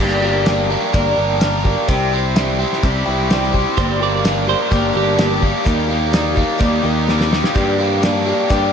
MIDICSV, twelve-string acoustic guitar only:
0, 0, Header, 1, 2, 480
1, 0, Start_track
1, 0, Key_signature, -2, "minor"
1, 0, Tempo, 472813
1, 1911, Time_signature, 4, 2, 24, 8
1, 8861, End_track
2, 0, Start_track
2, 0, Title_t, "Twelve-string acoustic guitar"
2, 0, Program_c, 0, 25
2, 0, Note_on_c, 0, 43, 78
2, 0, Note_on_c, 0, 50, 71
2, 0, Note_on_c, 0, 55, 84
2, 4, Note_on_c, 0, 58, 77
2, 4, Note_on_c, 0, 62, 76
2, 9, Note_on_c, 0, 67, 82
2, 211, Note_off_c, 0, 67, 0
2, 224, Note_on_c, 0, 67, 52
2, 225, Note_off_c, 0, 62, 0
2, 231, Note_off_c, 0, 43, 0
2, 234, Note_off_c, 0, 50, 0
2, 234, Note_off_c, 0, 58, 0
2, 235, Note_off_c, 0, 55, 0
2, 237, Note_on_c, 0, 62, 49
2, 246, Note_on_c, 0, 58, 43
2, 254, Note_on_c, 0, 55, 44
2, 452, Note_off_c, 0, 55, 0
2, 463, Note_off_c, 0, 58, 0
2, 464, Note_on_c, 0, 55, 61
2, 467, Note_off_c, 0, 67, 0
2, 469, Note_off_c, 0, 62, 0
2, 475, Note_on_c, 0, 58, 55
2, 481, Note_on_c, 0, 62, 64
2, 492, Note_on_c, 0, 67, 67
2, 691, Note_off_c, 0, 67, 0
2, 702, Note_off_c, 0, 62, 0
2, 703, Note_on_c, 0, 67, 49
2, 708, Note_off_c, 0, 55, 0
2, 713, Note_off_c, 0, 58, 0
2, 714, Note_on_c, 0, 62, 52
2, 724, Note_on_c, 0, 58, 45
2, 731, Note_on_c, 0, 55, 48
2, 942, Note_off_c, 0, 58, 0
2, 943, Note_off_c, 0, 55, 0
2, 947, Note_off_c, 0, 67, 0
2, 947, Note_on_c, 0, 43, 70
2, 949, Note_off_c, 0, 62, 0
2, 949, Note_on_c, 0, 50, 78
2, 954, Note_on_c, 0, 58, 84
2, 955, Note_on_c, 0, 55, 84
2, 960, Note_on_c, 0, 67, 85
2, 961, Note_on_c, 0, 62, 86
2, 1166, Note_off_c, 0, 67, 0
2, 1178, Note_on_c, 0, 67, 59
2, 1182, Note_off_c, 0, 62, 0
2, 1187, Note_off_c, 0, 58, 0
2, 1189, Note_off_c, 0, 43, 0
2, 1190, Note_off_c, 0, 50, 0
2, 1193, Note_off_c, 0, 55, 0
2, 1194, Note_on_c, 0, 62, 57
2, 1199, Note_on_c, 0, 58, 52
2, 1212, Note_on_c, 0, 55, 50
2, 1414, Note_off_c, 0, 55, 0
2, 1424, Note_off_c, 0, 67, 0
2, 1426, Note_off_c, 0, 58, 0
2, 1426, Note_on_c, 0, 55, 61
2, 1432, Note_off_c, 0, 62, 0
2, 1438, Note_on_c, 0, 58, 54
2, 1445, Note_on_c, 0, 62, 68
2, 1452, Note_on_c, 0, 67, 62
2, 1654, Note_off_c, 0, 67, 0
2, 1665, Note_off_c, 0, 62, 0
2, 1667, Note_on_c, 0, 67, 54
2, 1668, Note_off_c, 0, 55, 0
2, 1674, Note_off_c, 0, 58, 0
2, 1677, Note_on_c, 0, 62, 47
2, 1688, Note_on_c, 0, 58, 45
2, 1693, Note_on_c, 0, 55, 40
2, 1899, Note_off_c, 0, 55, 0
2, 1905, Note_on_c, 0, 48, 73
2, 1908, Note_off_c, 0, 67, 0
2, 1912, Note_on_c, 0, 55, 76
2, 1913, Note_off_c, 0, 58, 0
2, 1914, Note_off_c, 0, 62, 0
2, 1917, Note_on_c, 0, 60, 80
2, 1925, Note_on_c, 0, 64, 74
2, 1925, Note_on_c, 0, 67, 88
2, 2136, Note_off_c, 0, 67, 0
2, 2148, Note_off_c, 0, 48, 0
2, 2148, Note_on_c, 0, 67, 51
2, 2151, Note_off_c, 0, 55, 0
2, 2151, Note_off_c, 0, 64, 0
2, 2154, Note_off_c, 0, 60, 0
2, 2163, Note_on_c, 0, 64, 51
2, 2176, Note_on_c, 0, 60, 43
2, 2378, Note_on_c, 0, 55, 54
2, 2381, Note_off_c, 0, 60, 0
2, 2389, Note_off_c, 0, 67, 0
2, 2391, Note_off_c, 0, 64, 0
2, 2393, Note_on_c, 0, 60, 63
2, 2403, Note_on_c, 0, 64, 61
2, 2412, Note_on_c, 0, 67, 62
2, 2615, Note_off_c, 0, 67, 0
2, 2624, Note_off_c, 0, 55, 0
2, 2624, Note_off_c, 0, 64, 0
2, 2627, Note_on_c, 0, 67, 54
2, 2631, Note_off_c, 0, 60, 0
2, 2636, Note_on_c, 0, 64, 45
2, 2651, Note_on_c, 0, 60, 42
2, 2864, Note_off_c, 0, 60, 0
2, 2868, Note_off_c, 0, 67, 0
2, 2870, Note_on_c, 0, 48, 81
2, 2873, Note_off_c, 0, 64, 0
2, 2873, Note_on_c, 0, 55, 85
2, 2876, Note_on_c, 0, 60, 77
2, 2884, Note_on_c, 0, 64, 87
2, 2886, Note_on_c, 0, 67, 81
2, 3089, Note_off_c, 0, 67, 0
2, 3101, Note_on_c, 0, 67, 62
2, 3109, Note_off_c, 0, 48, 0
2, 3110, Note_off_c, 0, 64, 0
2, 3111, Note_off_c, 0, 55, 0
2, 3113, Note_off_c, 0, 60, 0
2, 3122, Note_on_c, 0, 64, 50
2, 3131, Note_on_c, 0, 60, 48
2, 3343, Note_off_c, 0, 60, 0
2, 3344, Note_off_c, 0, 67, 0
2, 3344, Note_on_c, 0, 55, 57
2, 3351, Note_off_c, 0, 64, 0
2, 3356, Note_on_c, 0, 60, 62
2, 3363, Note_on_c, 0, 64, 68
2, 3374, Note_on_c, 0, 67, 62
2, 3580, Note_off_c, 0, 67, 0
2, 3586, Note_off_c, 0, 55, 0
2, 3592, Note_off_c, 0, 60, 0
2, 3592, Note_on_c, 0, 67, 49
2, 3593, Note_off_c, 0, 64, 0
2, 3605, Note_on_c, 0, 64, 48
2, 3616, Note_on_c, 0, 60, 43
2, 3828, Note_on_c, 0, 50, 71
2, 3829, Note_on_c, 0, 43, 84
2, 3830, Note_off_c, 0, 67, 0
2, 3831, Note_on_c, 0, 55, 75
2, 3836, Note_off_c, 0, 60, 0
2, 3836, Note_off_c, 0, 64, 0
2, 3840, Note_on_c, 0, 58, 88
2, 3841, Note_on_c, 0, 62, 84
2, 3844, Note_on_c, 0, 67, 84
2, 4046, Note_off_c, 0, 67, 0
2, 4058, Note_on_c, 0, 67, 55
2, 4060, Note_off_c, 0, 62, 0
2, 4067, Note_off_c, 0, 58, 0
2, 4068, Note_off_c, 0, 43, 0
2, 4068, Note_off_c, 0, 50, 0
2, 4069, Note_off_c, 0, 55, 0
2, 4072, Note_on_c, 0, 62, 51
2, 4079, Note_on_c, 0, 58, 48
2, 4088, Note_on_c, 0, 55, 46
2, 4290, Note_off_c, 0, 55, 0
2, 4301, Note_off_c, 0, 58, 0
2, 4302, Note_on_c, 0, 55, 57
2, 4303, Note_off_c, 0, 67, 0
2, 4309, Note_off_c, 0, 62, 0
2, 4313, Note_on_c, 0, 58, 57
2, 4320, Note_on_c, 0, 62, 69
2, 4327, Note_on_c, 0, 67, 70
2, 4530, Note_off_c, 0, 67, 0
2, 4542, Note_on_c, 0, 67, 60
2, 4544, Note_off_c, 0, 55, 0
2, 4546, Note_off_c, 0, 62, 0
2, 4550, Note_off_c, 0, 58, 0
2, 4559, Note_on_c, 0, 62, 52
2, 4562, Note_on_c, 0, 58, 48
2, 4574, Note_on_c, 0, 55, 41
2, 4774, Note_off_c, 0, 55, 0
2, 4777, Note_on_c, 0, 43, 78
2, 4778, Note_off_c, 0, 58, 0
2, 4780, Note_off_c, 0, 62, 0
2, 4783, Note_on_c, 0, 50, 84
2, 4784, Note_off_c, 0, 67, 0
2, 4786, Note_on_c, 0, 55, 85
2, 4790, Note_on_c, 0, 58, 89
2, 4792, Note_on_c, 0, 62, 94
2, 4795, Note_on_c, 0, 67, 88
2, 4997, Note_off_c, 0, 67, 0
2, 5004, Note_off_c, 0, 62, 0
2, 5009, Note_on_c, 0, 67, 60
2, 5014, Note_off_c, 0, 58, 0
2, 5016, Note_on_c, 0, 62, 53
2, 5021, Note_off_c, 0, 43, 0
2, 5021, Note_off_c, 0, 55, 0
2, 5025, Note_off_c, 0, 50, 0
2, 5026, Note_on_c, 0, 58, 51
2, 5033, Note_on_c, 0, 55, 45
2, 5243, Note_off_c, 0, 55, 0
2, 5251, Note_off_c, 0, 58, 0
2, 5256, Note_on_c, 0, 55, 61
2, 5258, Note_off_c, 0, 67, 0
2, 5261, Note_off_c, 0, 62, 0
2, 5263, Note_on_c, 0, 58, 65
2, 5272, Note_on_c, 0, 62, 65
2, 5285, Note_on_c, 0, 67, 63
2, 5473, Note_off_c, 0, 67, 0
2, 5485, Note_on_c, 0, 67, 53
2, 5489, Note_off_c, 0, 62, 0
2, 5492, Note_off_c, 0, 58, 0
2, 5501, Note_off_c, 0, 55, 0
2, 5501, Note_on_c, 0, 62, 51
2, 5504, Note_on_c, 0, 58, 44
2, 5514, Note_on_c, 0, 55, 42
2, 5717, Note_off_c, 0, 55, 0
2, 5721, Note_off_c, 0, 58, 0
2, 5723, Note_on_c, 0, 51, 77
2, 5729, Note_on_c, 0, 55, 72
2, 5731, Note_off_c, 0, 67, 0
2, 5733, Note_on_c, 0, 58, 83
2, 5734, Note_off_c, 0, 62, 0
2, 5739, Note_on_c, 0, 63, 83
2, 5743, Note_on_c, 0, 67, 89
2, 5946, Note_off_c, 0, 67, 0
2, 5959, Note_on_c, 0, 67, 58
2, 5965, Note_off_c, 0, 63, 0
2, 5974, Note_off_c, 0, 51, 0
2, 5977, Note_off_c, 0, 55, 0
2, 5977, Note_on_c, 0, 63, 51
2, 5979, Note_off_c, 0, 58, 0
2, 5991, Note_on_c, 0, 58, 47
2, 6199, Note_off_c, 0, 58, 0
2, 6205, Note_on_c, 0, 55, 63
2, 6211, Note_off_c, 0, 63, 0
2, 6211, Note_on_c, 0, 58, 62
2, 6212, Note_off_c, 0, 67, 0
2, 6223, Note_on_c, 0, 63, 60
2, 6228, Note_on_c, 0, 67, 69
2, 6429, Note_off_c, 0, 67, 0
2, 6441, Note_off_c, 0, 63, 0
2, 6441, Note_on_c, 0, 67, 50
2, 6453, Note_on_c, 0, 63, 47
2, 6456, Note_off_c, 0, 55, 0
2, 6459, Note_off_c, 0, 58, 0
2, 6469, Note_on_c, 0, 58, 45
2, 6679, Note_on_c, 0, 51, 80
2, 6681, Note_off_c, 0, 58, 0
2, 6687, Note_off_c, 0, 63, 0
2, 6688, Note_on_c, 0, 55, 87
2, 6691, Note_off_c, 0, 67, 0
2, 6693, Note_on_c, 0, 58, 89
2, 6699, Note_on_c, 0, 63, 84
2, 6703, Note_on_c, 0, 67, 85
2, 6917, Note_off_c, 0, 67, 0
2, 6930, Note_on_c, 0, 67, 59
2, 6932, Note_off_c, 0, 63, 0
2, 6933, Note_off_c, 0, 51, 0
2, 6937, Note_off_c, 0, 55, 0
2, 6940, Note_off_c, 0, 58, 0
2, 6944, Note_on_c, 0, 63, 49
2, 6958, Note_on_c, 0, 58, 47
2, 7168, Note_off_c, 0, 58, 0
2, 7172, Note_on_c, 0, 55, 55
2, 7178, Note_off_c, 0, 67, 0
2, 7179, Note_off_c, 0, 63, 0
2, 7180, Note_on_c, 0, 58, 65
2, 7191, Note_on_c, 0, 63, 61
2, 7200, Note_on_c, 0, 67, 68
2, 7396, Note_off_c, 0, 67, 0
2, 7408, Note_on_c, 0, 67, 50
2, 7416, Note_off_c, 0, 63, 0
2, 7419, Note_off_c, 0, 55, 0
2, 7423, Note_off_c, 0, 58, 0
2, 7428, Note_on_c, 0, 63, 44
2, 7438, Note_on_c, 0, 58, 40
2, 7657, Note_off_c, 0, 67, 0
2, 7658, Note_on_c, 0, 43, 77
2, 7660, Note_on_c, 0, 50, 82
2, 7662, Note_off_c, 0, 58, 0
2, 7668, Note_off_c, 0, 63, 0
2, 7670, Note_on_c, 0, 55, 80
2, 7675, Note_on_c, 0, 58, 74
2, 7675, Note_on_c, 0, 67, 85
2, 7677, Note_on_c, 0, 62, 77
2, 7887, Note_off_c, 0, 67, 0
2, 7897, Note_off_c, 0, 62, 0
2, 7899, Note_on_c, 0, 67, 47
2, 7903, Note_off_c, 0, 43, 0
2, 7903, Note_off_c, 0, 58, 0
2, 7904, Note_off_c, 0, 50, 0
2, 7909, Note_off_c, 0, 55, 0
2, 7909, Note_on_c, 0, 62, 49
2, 7915, Note_on_c, 0, 58, 45
2, 7922, Note_on_c, 0, 55, 45
2, 8124, Note_off_c, 0, 55, 0
2, 8131, Note_off_c, 0, 58, 0
2, 8136, Note_on_c, 0, 55, 58
2, 8141, Note_off_c, 0, 62, 0
2, 8144, Note_off_c, 0, 67, 0
2, 8144, Note_on_c, 0, 58, 60
2, 8153, Note_on_c, 0, 62, 66
2, 8160, Note_on_c, 0, 67, 64
2, 8374, Note_off_c, 0, 67, 0
2, 8380, Note_off_c, 0, 62, 0
2, 8382, Note_off_c, 0, 55, 0
2, 8386, Note_off_c, 0, 58, 0
2, 8386, Note_on_c, 0, 67, 47
2, 8392, Note_on_c, 0, 62, 44
2, 8402, Note_on_c, 0, 58, 51
2, 8409, Note_on_c, 0, 55, 43
2, 8612, Note_off_c, 0, 55, 0
2, 8620, Note_off_c, 0, 58, 0
2, 8622, Note_off_c, 0, 67, 0
2, 8623, Note_on_c, 0, 43, 76
2, 8624, Note_off_c, 0, 62, 0
2, 8625, Note_on_c, 0, 55, 88
2, 8626, Note_on_c, 0, 50, 80
2, 8632, Note_on_c, 0, 58, 77
2, 8634, Note_on_c, 0, 67, 89
2, 8636, Note_on_c, 0, 62, 86
2, 8843, Note_off_c, 0, 67, 0
2, 8859, Note_off_c, 0, 62, 0
2, 8860, Note_off_c, 0, 58, 0
2, 8861, Note_off_c, 0, 43, 0
2, 8861, Note_off_c, 0, 50, 0
2, 8861, Note_off_c, 0, 55, 0
2, 8861, End_track
0, 0, End_of_file